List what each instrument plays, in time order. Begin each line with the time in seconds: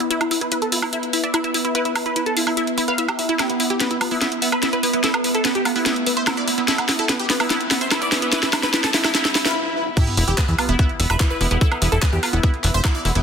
Already playing: synth drone B3
0.00 supersaw synth B3, synth arpeggio sound E4, closed hi-hat
0.10 synth arpeggio sound E4, supersaw synth B4, closed hi-hat
0.21 supersaw synth E4, closed hi-hat, high woodblock
0.31 supersaw synth E4, synth arpeggio sound E4, open hi-hat
0.41 synth arpeggio sound E4, supersaw synth B4, closed hi-hat
0.52 supersaw synth E4, synth arpeggio sound B4, closed hi-hat
0.62 supersaw synth A4, closed hi-hat
0.72 supersaw synth E4, synth arpeggio sound F4, open hi-hat
0.82 synth arpeggio sound E4, supersaw synth E4, high woodblock
0.93 synth arpeggio sound E4, supersaw synth E4, closed hi-hat
1.03 closed hi-hat
1.13 supersaw synth E4, synth arpeggio sound E5, open hi-hat
1.24 supersaw synth D5, synth arpeggio sound E5, closed hi-hat
1.34 supersaw synth E4, synth arpeggio sound E4, closed hi-hat, high woodblock
1.44 synth arpeggio sound E4, supersaw synth E5, closed hi-hat
1.54 synth arpeggio sound E4, supersaw synth E4, open hi-hat
1.65 synth arpeggio sound E4, supersaw synth E4, closed hi-hat
1.75 synth arpeggio sound E4, supersaw synth B4, closed hi-hat
1.85 supersaw synth E4, closed hi-hat
1.95 synth arpeggio sound E4, supersaw synth E4, open hi-hat, high woodblock
2.06 synth arpeggio sound E4, supersaw synth B4, closed hi-hat
2.16 supersaw synth E4, synth arpeggio sound B4, closed hi-hat
2.26 supersaw synth A4, closed hi-hat
2.37 supersaw synth E4, synth arpeggio sound F4, open hi-hat
2.47 synth arpeggio sound E4, supersaw synth E4, open hi-hat, high woodblock
2.57 synth arpeggio sound E4, supersaw synth E4, closed hi-hat
2.67 closed hi-hat
2.78 supersaw synth E4, synth arpeggio sound E4, open hi-hat
2.88 supersaw synth B4, synth arpeggio sound F5, closed hi-hat
2.98 supersaw synth E4, synth arpeggio sound E5, closed hi-hat
3.08 supersaw synth G4, synth arpeggio sound E5, closed hi-hat, high woodblock
3.19 supersaw synth E4, synth arpeggio sound E5, open hi-hat
3.29 synth arpeggio sound E4, supersaw synth E4, closed hi-hat
3.39 synth arpeggio sound E4, supersaw synth G4, snare, closed hi-hat, riser, high woodblock
3.50 supersaw synth B3, closed hi-hat
3.60 supersaw synth B3, synth arpeggio sound E4, open hi-hat
3.70 synth arpeggio sound E4, supersaw synth G4, closed hi-hat
3.80 supersaw synth B3, synth arpeggio sound B4, snare, closed hi-hat
3.91 supersaw synth E4, closed hi-hat
4.01 supersaw synth B3, synth arpeggio sound F4, open hi-hat, high woodblock
4.11 supersaw synth B3, synth arpeggio sound E4, open hi-hat
4.21 supersaw synth B3, synth arpeggio sound E4, snare, closed hi-hat
4.32 closed hi-hat
4.42 supersaw synth B3, synth arpeggio sound E5, open hi-hat
4.52 supersaw synth B4, synth arpeggio sound E5, closed hi-hat, high woodblock
4.63 supersaw synth B3, synth arpeggio sound E4, snare, closed hi-hat
4.73 synth arpeggio sound E4, supersaw synth B4, closed hi-hat
4.83 supersaw synth B3, synth arpeggio sound E4, open hi-hat
4.93 supersaw synth B3, synth arpeggio sound E4, closed hi-hat
5.04 synth arpeggio sound E4, supersaw synth A4, snare, closed hi-hat
5.14 supersaw synth B3, closed hi-hat, high woodblock
5.24 supersaw synth B3, synth arpeggio sound E4, open hi-hat
5.35 synth arpeggio sound E4, supersaw synth A4, closed hi-hat
5.45 supersaw synth B3, synth arpeggio sound B4, snare, closed hi-hat
5.55 supersaw synth G4, closed hi-hat
5.65 supersaw synth B3, synth arpeggio sound F4, open hi-hat, high woodblock
5.76 supersaw synth B3, synth arpeggio sound E4, open hi-hat
5.86 supersaw synth B3, synth arpeggio sound E4, snare, closed hi-hat
5.96 closed hi-hat
6.06 supersaw synth B3, synth arpeggio sound E5, open hi-hat
6.17 supersaw synth C5, synth arpeggio sound E5, closed hi-hat
6.27 supersaw synth B3, synth arpeggio sound E4, snare, closed hi-hat, high woodblock
6.37 synth arpeggio sound E4, supersaw synth D5, closed hi-hat
6.48 supersaw synth B3, synth arpeggio sound E4, open hi-hat
6.58 supersaw synth B3, synth arpeggio sound E4, closed hi-hat
6.68 synth arpeggio sound E4, supersaw synth A4, snare, closed hi-hat
6.78 supersaw synth B3, closed hi-hat, high woodblock
6.89 supersaw synth B3, synth arpeggio sound E4, snare, open hi-hat
6.99 synth arpeggio sound E4, supersaw synth A4, closed hi-hat
7.09 supersaw synth B3, synth arpeggio sound B4, snare, closed hi-hat
7.19 supersaw synth G4, closed hi-hat
7.30 supersaw synth B3, synth arpeggio sound F4, snare, open hi-hat
7.40 supersaw synth B3, synth arpeggio sound E4, open hi-hat, high woodblock
7.50 supersaw synth B3, synth arpeggio sound E4, snare, closed hi-hat
7.61 closed hi-hat
7.71 supersaw synth B3, synth arpeggio sound E5, snare, open hi-hat
7.81 supersaw synth C5, synth arpeggio sound E5, closed hi-hat
7.91 supersaw synth B3, synth arpeggio sound E4, snare, closed hi-hat, high woodblock
8.02 synth arpeggio sound E4, supersaw synth D5, closed hi-hat
8.12 supersaw synth B3, synth arpeggio sound E4, snare, open hi-hat
8.22 supersaw synth B3, synth arpeggio sound E4, closed hi-hat
8.32 synth arpeggio sound E4, supersaw synth B4, snare, closed hi-hat
8.43 supersaw synth E4, snare, closed hi-hat
8.53 synth arpeggio sound E4, supersaw synth E4, snare, open hi-hat, high woodblock
8.63 synth arpeggio sound E4, supersaw synth B4, snare, closed hi-hat
8.74 supersaw synth E4, synth arpeggio sound B4, snare, closed hi-hat
8.84 supersaw synth A4, snare, closed hi-hat
8.94 supersaw synth E4, synth arpeggio sound F4, snare, open hi-hat
9.04 synth arpeggio sound E4, supersaw synth E4, snare, open hi-hat, high woodblock
9.15 synth arpeggio sound E4, supersaw synth E4, snare, closed hi-hat, swell
9.25 snare, closed hi-hat
9.35 supersaw synth E4, synth arpeggio sound E5, snare, open hi-hat
9.45 synth arpeggio sound F4, supersaw synth B4, snare, closed hi-hat
9.97 synth drone B3, synth arpeggio sound E4, supersaw synth G4, kick, closed hi-hat, crash, sub drop, high woodblock
10.07 supersaw synth B3, closed hi-hat
10.17 analog synth bass E1, supersaw synth B3, synth arpeggio sound E4, open hi-hat
10.28 analog synth bass E1, synth arpeggio sound E4, supersaw synth G4, closed hi-hat
10.38 supersaw synth B3, synth arpeggio sound B4, kick, clap
10.48 analog synth bass E2, supersaw synth E4, closed hi-hat
10.58 supersaw synth B3, synth arpeggio sound F4, open hi-hat, high woodblock
10.69 analog synth bass E1, supersaw synth B3, synth arpeggio sound E4, closed hi-hat
10.79 supersaw synth B3, synth arpeggio sound E4, kick, closed hi-hat
10.89 closed hi-hat
11.00 analog synth bass E1, supersaw synth B3, synth arpeggio sound E5, open hi-hat
11.10 analog synth bass E1, supersaw synth B4, synth arpeggio sound E5, high woodblock
11.20 supersaw synth B3, synth arpeggio sound E4, kick, clap, closed hi-hat
11.30 synth arpeggio sound E4, supersaw synth B4, closed hi-hat
11.41 analog synth bass E1, supersaw synth B3, synth arpeggio sound E4, open hi-hat
11.51 analog synth bass E1, supersaw synth B3, synth arpeggio sound E4, closed hi-hat
11.61 synth arpeggio sound E4, supersaw synth A4, kick, closed hi-hat
11.72 supersaw synth B3, closed hi-hat, high woodblock
11.82 analog synth bass E1, supersaw synth B3, synth arpeggio sound E4, open hi-hat
11.92 analog synth bass E1, synth arpeggio sound E4, supersaw synth A4, closed hi-hat
12.02 supersaw synth B3, synth arpeggio sound B4, kick, clap
12.13 analog synth bass E2, supersaw synth G4, closed hi-hat
12.23 supersaw synth B3, synth arpeggio sound F4, open hi-hat, high woodblock
12.33 analog synth bass E1, supersaw synth B3, synth arpeggio sound E4, closed hi-hat
12.43 supersaw synth B3, synth arpeggio sound E4, kick, closed hi-hat
12.54 closed hi-hat
12.64 analog synth bass E1, supersaw synth B3, synth arpeggio sound E5, clap, open hi-hat
12.74 analog synth bass E1, supersaw synth C5, synth arpeggio sound E5, closed hi-hat
12.84 supersaw synth B3, synth arpeggio sound E4, kick, clap, closed hi-hat, high woodblock
12.95 synth arpeggio sound E4, supersaw synth D5, closed hi-hat
13.05 analog synth bass E1, supersaw synth B3, synth arpeggio sound E4, open hi-hat
13.15 analog synth bass E1, supersaw synth B3, synth arpeggio sound E4, closed hi-hat